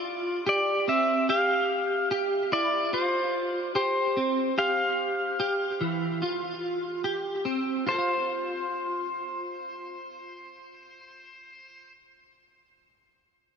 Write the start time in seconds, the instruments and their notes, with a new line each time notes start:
Already playing: clean electric guitar F4, pedal steel guitar D5
0.46 clean electric guitar G4, pedal steel guitar D5
0.88 clean electric guitar C4, pedal steel guitar E5
1.29 clean electric guitar G4, pedal steel guitar F5
2.11 clean electric guitar G4
2.52 clean electric guitar E4, pedal steel guitar D5
2.93 clean electric guitar F4, pedal steel guitar C5
3.75 clean electric guitar G4, pedal steel guitar C5
4.17 clean electric guitar C4
4.58 clean electric guitar G4, pedal steel guitar F5
5.40 clean electric guitar G4
5.81 clean electric guitar E3
6.22 clean electric guitar F4
7.04 clean electric guitar G4
7.45 clean electric guitar C4
7.87 clean electric guitar F4 A4, pedal steel guitar C5
7.95 clean electric guitar C5 F5